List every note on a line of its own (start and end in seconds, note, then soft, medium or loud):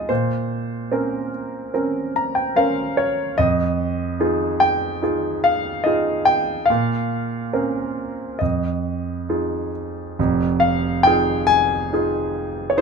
0.00 0.12 G#3 soft
0.00 0.12 D#4 soft
0.00 0.12 F4 soft
0.00 0.11 D#5 medium
0.00 0.12 F5 medium
0.00 0.12 G5 medium
0.09 3.33 A#2 soft
0.09 1.29 C5 medium
0.92 1.72 C4 soft
0.92 1.72 C#4 soft
0.92 1.72 A#4 soft
1.74 2.53 C4 soft
1.74 2.54 C#4 soft
1.74 2.54 A#4 soft
2.16 2.35 A#5 medium
2.35 2.54 G5 medium
2.56 3.36 C#4 soft
2.56 3.36 A#4 soft
2.56 3.35 C5 soft
2.56 2.94 F5 medium
2.97 3.35 C#5 medium
3.38 6.66 F2 medium
3.38 4.65 D#5 medium
4.20 5.00 D#4 soft
4.20 5.00 F4 soft
4.20 5.01 G#4 soft
4.60 5.46 G5 medium
5.02 5.83 D#4 soft
5.02 5.83 F4 soft
5.02 5.84 G#4 soft
5.44 5.87 F5 medium
5.84 6.67 D#4 soft
5.84 6.67 F4 soft
5.84 6.67 G#4 soft
5.84 6.28 D#5 medium
6.25 6.70 G5 medium
6.66 8.44 F5 medium
6.70 8.37 A#2 medium
7.53 8.37 C4 soft
7.53 8.37 C#4 soft
7.53 8.37 A#4 soft
8.39 10.15 F2 soft
8.39 9.69 D#5 medium
9.29 10.16 D#4 soft
9.29 10.16 F4 soft
9.29 10.16 G#4 soft
10.19 12.81 F1 medium
10.19 12.81 F2 medium
10.60 11.06 F5 medium
11.03 11.90 D#4 soft
11.03 11.90 F4 soft
11.03 11.91 G#4 soft
11.03 11.49 G5 medium
11.47 12.74 G#5 loud
11.93 12.76 D#4 soft
11.93 12.76 F4 soft
11.93 12.77 G#4 soft
12.70 12.77 C#5 medium
12.77 12.81 D#4 soft
12.77 12.81 C5 medium